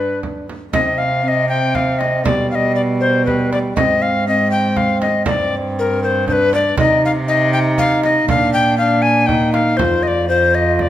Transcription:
Already playing: G2 D4 B4
0.23 frame drum
0.50 frame drum
0.73 C3 C4 D#5, frame drum
0.98 F5
1.24 C4 F5
1.28 D#5
1.49 G5
1.75 F5, frame drum
1.99 D#5, frame drum
2.25 B2 G3 D5, frame drum
2.51 F5
2.55 D#5
2.75 D5
3.01 C5
3.26 G3 B4, frame drum
3.52 D5, frame drum
3.76 G#2 C4 D#5, frame drum
4.02 F5
4.28 C4 D#5
4.51 G5
4.76 F5, frame drum
5.02 D#5, frame drum
5.26 G2 C4 D5, frame drum
5.79 A#4
6.04 C5
6.28 D4 C5, frame drum
6.32 B4
6.53 D5, frame drum
6.78 C3 D#4 D#5, frame drum
7.05 F5
7.28 D#4 D#5
7.53 G5
7.78 F5, frame drum
8.04 D#5, frame drum
8.28 A#2 D4 F5, frame drum
8.53 G5
8.78 D4 F5
9.02 G#5
9.27 D#4 G5, frame drum
9.53 F5, frame drum
9.77 F2 F4 C5, frame drum
10.03 D#5
10.08 D5
10.29 F4 C5
10.55 D#5
10.79 D5, frame drum

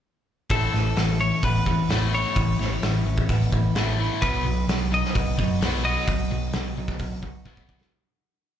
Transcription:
0.50 A1 A2 E3 A3 A4, kick, open hi-hat
0.73 A1 A2 E3, snare
0.96 A1 A2 E3, snare, open hi-hat
1.21 A2 E3 C#4 C#5
1.43 A1 A2 E3 B3 B4, kick, open hi-hat
1.66 E2 A2 E3 E4, kick
1.89 A1 A2 E3 A3 C#4, snare, open hi-hat
2.12 A2 E3 A3 E4 C#5
2.36 A1 A2 E3, kick, open hi-hat
2.59 A1 A2 E3, snare
2.82 A1 A2 E3, snare, open hi-hat
3.05 A1 A2 E3 C#4
3.18 kick
3.29 A1 A2 E3 B3, kick, open hi-hat
3.52 A1 A2 E3 E4, kick
3.75 A1 A2 E3 A3 C#4, snare, open hi-hat
3.99 A2 E3 A3 E4
4.21 B1 B2 F#3 B3 B4, kick, open hi-hat
4.45 B1 B2 F#3
4.68 B1 B2 F#3, snare, open hi-hat
4.91 B2 F#3 D#4 D#5
5.05 snare
5.14 B1 B2 F#3 B3, kick, open hi-hat
5.37 F#2 B2 F#3 F#4, kick
5.61 B1 B2 F#3 B3 D#4, snare, open hi-hat
5.84 B2 F#3 B3 F#4 D#5
6.07 B1 B2 F#3, kick, open hi-hat
6.31 B1 B2 F#3
6.53 B1 B2 F#3, snare, open hi-hat
6.77 B1 B2 F#3 D#4
6.88 kick, snare
6.99 B1 B2 F#3 B3, kick, open hi-hat
7.22 B1 B2 F#3 F#4, kick
7.45 B1 B2 F#3 B3 D#4, kick
7.57 kick
7.69 B2 F#3 B3 F#4, kick
7.81 snare

